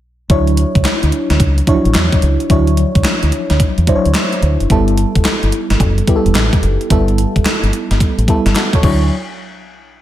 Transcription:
0.30 0.63 D2 loud
0.30 1.15 F#3 medium
0.30 1.16 D4 medium
0.30 1.16 E4 medium
0.30 1.16 C#5 medium
0.30 kick loud
0.30 closed hi-hat medium
0.47 closed hi-hat soft
0.57 closed hi-hat medium
0.75 0.82 C#2 medium
0.75 kick medium
0.75 closed hi-hat medium
0.85 muted fingered electric bass stroke soft
0.85 snare loud
0.85 clap medium
0.85 closed hi-hat medium
1.03 1.10 D2 medium
1.03 closed hi-hat soft
1.12 closed hi-hat medium
1.30 1.37 D2 medium
1.30 snare medium
1.30 closed hi-hat medium
1.40 1.60 C#2 loud
1.40 kick medium
1.40 closed hi-hat medium
1.58 closed hi-hat medium
1.67 1.76 F3 medium
1.67 2.34 D4 medium
1.67 2.34 E4 medium
1.67 2.34 C#5 medium
1.67 kick medium
1.67 closed hi-hat medium
1.74 2.37 F#3 medium
1.85 1.92 A1 medium
1.85 closed hi-hat medium
1.95 2.08 E2 medium
1.95 snare loud
1.95 clap medium
1.95 closed hi-hat medium
2.13 kick medium
2.13 closed hi-hat soft
2.22 2.36 C#2 medium
2.22 closed hi-hat medium
2.40 closed hi-hat soft
2.50 2.83 D2 loud
2.50 3.36 F#3 medium
2.50 3.36 D4 medium
2.50 3.36 E4 medium
2.50 3.36 C#5 medium
2.50 kick loud
2.50 closed hi-hat medium
2.67 closed hi-hat soft
2.77 closed hi-hat medium
2.95 3.02 C#2 medium
2.95 kick medium
2.95 closed hi-hat medium
3.04 muted fingered electric bass stroke soft
3.04 snare loud
3.04 clap medium
3.04 closed hi-hat medium
3.23 3.30 D2 medium
3.23 closed hi-hat soft
3.32 closed hi-hat medium
3.50 3.57 D2 medium
3.50 snare medium
3.50 closed hi-hat medium
3.60 kick medium
3.60 closed hi-hat medium
3.78 3.85 E2 medium
3.78 closed hi-hat medium
3.87 4.54 F#3 medium
3.87 4.54 D4 medium
3.87 4.54 E4 medium
3.87 3.97 C5 medium
3.87 kick medium
3.87 closed hi-hat medium
3.95 4.58 C#5 medium
4.05 4.13 D2 medium
4.05 closed hi-hat soft
4.15 snare loud
4.15 clap medium
4.15 closed hi-hat medium
4.33 closed hi-hat soft
4.42 4.56 D2 medium
4.42 closed hi-hat medium
4.60 4.67 F#1 medium
4.60 closed hi-hat medium
4.70 5.03 G1 medium
4.70 5.56 G3 medium
4.70 5.56 B3 medium
4.70 5.56 E4 medium
4.70 5.57 A4 medium
4.70 kick loud
4.70 closed hi-hat medium
4.88 closed hi-hat soft
4.97 closed hi-hat medium
5.15 5.23 F#1 medium
5.15 kick medium
5.15 closed hi-hat soft
5.25 snare loud
5.25 clap medium
5.25 closed hi-hat medium
5.43 5.50 G1 medium
5.43 closed hi-hat soft
5.52 closed hi-hat medium
5.70 5.77 G1 medium
5.70 snare medium
5.70 closed hi-hat medium
5.80 6.00 F#1 loud
5.80 kick medium
5.80 closed hi-hat medium
5.98 closed hi-hat medium
6.08 6.74 G3 medium
6.08 6.74 B3 medium
6.08 6.75 E4 medium
6.08 6.17 G4 medium
6.08 kick medium
6.08 closed hi-hat medium
6.16 6.78 A4 medium
6.25 6.33 E1 medium
6.25 closed hi-hat medium
6.35 6.48 A1 medium
6.35 snare loud
6.35 clap medium
6.35 closed hi-hat medium
6.53 kick loud
6.53 closed hi-hat soft
6.63 6.76 F#1 medium
6.63 closed hi-hat medium
6.81 closed hi-hat soft
6.90 7.24 G1 loud
6.90 7.76 G3 medium
6.90 7.76 B3 medium
6.90 7.77 E4 medium
6.90 7.77 A4 medium
6.90 kick loud
6.90 closed hi-hat medium
7.08 closed hi-hat soft
7.18 closed hi-hat medium
7.36 7.43 F#1 medium
7.36 kick medium
7.36 closed hi-hat medium
7.45 muted fingered electric bass stroke soft
7.45 snare loud
7.45 clap medium
7.45 closed hi-hat medium
7.63 7.70 G1 medium
7.63 closed hi-hat soft
7.73 closed hi-hat medium
7.91 7.98 G1 medium
7.91 snare medium
7.91 closed hi-hat soft
8.00 kick medium
8.00 closed hi-hat medium
8.18 8.25 A1 medium
8.18 closed hi-hat medium
8.28 8.83 G3 medium
8.28 8.83 B3 medium
8.28 8.83 E4 medium
8.28 8.56 A4 medium
8.28 kick medium
8.28 closed hi-hat medium
8.46 8.53 G1 medium
8.46 snare medium
8.46 closed hi-hat medium
8.56 8.73 F#4 medium
8.56 8.73 A4 medium
8.56 snare loud
8.56 clap medium
8.56 closed hi-hat medium
8.73 8.84 A4 medium
8.73 8.83 C#5 medium
8.73 kick medium
8.73 closed hi-hat soft
8.83 9.09 D2 loud
8.83 9.09 F#3 medium
8.83 9.09 D4 medium
8.83 9.09 E4 medium
8.83 9.09 C#5 medium
8.83 kick loud
8.83 crash medium

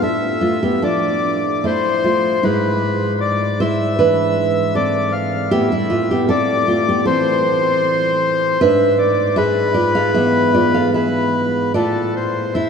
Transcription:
0.00 2.40 A2 medium
0.00 0.40 D4 medium
0.00 0.40 A4 medium
0.00 0.83 E5 medium
0.41 0.61 A3 medium
0.41 0.62 F4 medium
0.63 0.82 B3 medium
0.63 0.82 G4 medium
0.82 2.39 F3 medium
0.82 1.61 D4 medium
0.82 1.61 A4 medium
0.82 1.65 D5 medium
1.64 2.02 A3 medium
1.64 2.02 E4 medium
1.64 2.44 C5 medium
2.04 2.41 A3 medium
2.04 2.41 F4 medium
2.43 5.47 G#2 medium
2.43 3.56 G#3 medium
2.43 3.56 E4 medium
2.43 3.19 B4 medium
3.20 3.60 D5 medium
3.60 3.97 E4 medium
3.60 3.97 C5 loud
3.60 4.75 E5 medium
3.99 5.47 E3 medium
3.99 4.71 D4 medium
3.99 4.72 B4 medium
4.75 5.47 C4 medium
4.75 5.48 A4 medium
4.75 5.13 D5 medium
5.12 5.51 F5 medium
5.51 8.57 A2 medium
5.51 5.70 B3 medium
5.51 5.70 G4 loud
5.51 6.29 E5 medium
5.72 5.90 G3 medium
5.72 5.91 E4 medium
5.90 6.09 A3 medium
5.90 6.09 F4 loud
6.11 6.29 B3 medium
6.11 6.28 G4 medium
6.29 6.65 C4 medium
6.29 6.66 A4 loud
6.29 7.05 D5 medium
6.68 6.86 A3 medium
6.68 6.87 F4 medium
6.89 7.06 B3 medium
6.89 7.05 G4 medium
7.05 8.57 E3 medium
7.05 7.79 C4 medium
7.05 7.79 A4 medium
7.05 8.60 C5 medium
8.61 11.70 G#2 medium
8.61 9.33 D4 medium
8.61 9.34 B4 loud
8.61 8.98 E5 medium
8.98 9.36 D5 medium
9.36 9.73 G#4 medium
9.36 10.93 B4 medium
9.36 9.73 E5 loud
9.74 9.94 F4 medium
9.74 9.95 D5 loud
9.95 10.14 A4 medium
9.95 10.14 F5 medium
10.14 11.70 E3 medium
10.14 11.70 B3 medium
10.14 10.52 G#4 medium
10.14 10.53 E5 medium
10.55 10.73 F4 medium
10.55 10.74 D5 loud
10.74 10.94 A4 medium
10.74 10.94 F5 medium
10.94 11.71 G#4 medium
10.94 11.73 B4 medium
10.94 11.71 E5 medium
11.74 12.70 A2 medium
11.74 12.51 F4 medium
11.74 12.15 A4 medium
11.74 12.51 D5 loud
12.16 12.54 C5 medium
12.54 12.70 E4 medium
12.54 12.70 C5 loud
12.54 12.70 E5 medium

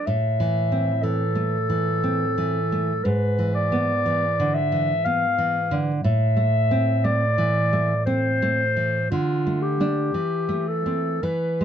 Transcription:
0.06 3.01 A2 soft
0.06 1.04 E5 medium
0.40 0.91 E3 soft
0.72 1.23 C4 soft
1.03 1.57 E3 soft
1.03 3.05 A4 medium
1.35 1.90 A3 soft
1.70 2.25 E3 soft
2.04 2.58 C4 soft
2.38 2.92 E3 soft
2.72 3.05 A3 soft
3.04 5.99 G#2 soft
3.04 3.54 B4 medium
3.39 3.91 E3 soft
3.54 4.56 D5 medium
3.72 4.25 B3 soft
4.06 4.58 E3 soft
4.40 4.92 D3 soft
4.54 5.06 E5 medium
4.72 5.24 E3 soft
5.05 5.58 B3 soft
5.05 5.77 F5 medium
5.38 5.91 E3 soft
5.71 6.04 D3 soft
6.04 9.07 A2 soft
6.04 7.06 E5 medium
6.37 6.90 A3 soft
6.71 7.24 C4 soft
7.04 7.58 A3 soft
7.04 8.05 D5 medium
7.38 7.92 E3 soft
7.73 8.28 A3 soft
8.06 8.62 C4 soft
8.06 9.09 C5 medium
8.42 8.98 A3 soft
8.77 9.11 E3 soft
9.10 10.11 D3 soft
9.10 9.64 F4 medium
9.47 9.79 A3 soft
9.62 10.69 G4 medium
9.80 10.11 A3 soft
9.80 10.11 D4 soft
10.14 11.19 E3 soft
10.49 10.85 A3 soft
10.68 11.24 A4 medium
10.86 11.19 A3 soft
10.86 11.19 C4 soft
11.23 11.65 E3 soft
11.23 11.65 B4 medium
11.61 11.65 G#3 soft

